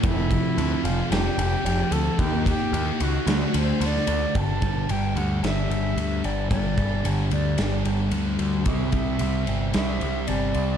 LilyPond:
<<
  \new Staff \with { instrumentName = "Flute" } { \time 4/4 \key d \dorian \tempo 4 = 111 e'4. f'8 g'4. a'8 | g'8 g'4 fis'4 c''8 d''4 | \key c \lydian a''4 g''8 fis''8 e''4. d''8 | d''4. d''4 r4. |
e''2 e''4 d''4 | }
  \new Staff \with { instrumentName = "Distorted electric guitar" } { \clef bass \time 4/4 \key d \dorian <f, c f>8 <c f>8 <f, c f>8 <c f>8 <f, c f>8 <c f>8 <f, c f>8 <c f>8 | <ees bes ees'>8 <bes ees'>8 <ees bes ees'>8 <bes ees'>8 <d a d'>8 <a d'>8 <d a d'>8 <a d'>8 | \key c \lydian <g, d g>8 <d g>8 <g, d g>8 <d g>8 <g, d g>8 <d g>8 <g, d g>8 <d g>8 | <g, d g>8 <d g>8 <g, d g>8 <d g>8 <g, d g>8 <d g>8 <g, d g>8 <d g>8 |
<c g c'>8 <g c'>8 <c g c'>8 <g c'>8 <c g c'>8 <g c'>8 <c g c'>8 <g c'>8 | }
  \new Staff \with { instrumentName = "Picked electric bass" } { \clef bass \time 4/4 \key d \dorian f,,4 d,8 f,,8 f,,8 f,,8 f,,8 d,8 | ees,4 ees,8 cis,8 d,8 d,8 d,8 d,8 | \key c \lydian g,,8 g,,8 g,,8 d,8 g,,8 g,,8 d,8 g,,8 | g,,8 g,,8 g,,8 d,8 g,,8 g,,8 d,8 d,8 |
c,8 c,8 c,8 g,,8 c,8 c,8 g,,8 c,8 | }
  \new DrumStaff \with { instrumentName = "Drums" } \drummode { \time 4/4 <bd cymr>8 <bd cymr>8 cymr8 cymr8 <cymr sn>8 cymr8 cymr8 cymr8 | <bd cymr>8 <bd cymr>8 cymr8 cymr8 <cymr sn>8 cymr8 cymr16 sn16 cymr8 | <bd cymr>8 <bd cymr>8 cymr8 cymr8 <cymr sn>8 cymr8 cymr8 cymr8 | <bd cymr>8 <bd cymr>8 cymr8 cymr8 <cymr sn>8 cymr8 cymr8 cymr8 |
<bd cymr>8 <bd cymr>8 cymr8 cymr8 <cymr sn>8 cymr8 cymr8 cymr8 | }
>>